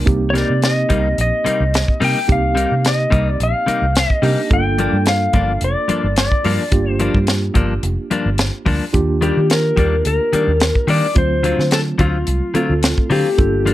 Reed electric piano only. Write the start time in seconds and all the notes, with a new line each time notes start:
0.06 A#3 C4 D#4 G4
2.28 A#3 C4 D#4 G4
4.22 A#3 D4 D#4 G4
4.50 A#3 D4 F4 A4
6.71 A#3 D4 F4 G4
8.93 A#3 D4 F4 G4
11.15 F#3 A3 C4 F4
12.55 A3 C4 F4 A4
13.38 A#3 D4 F4 A4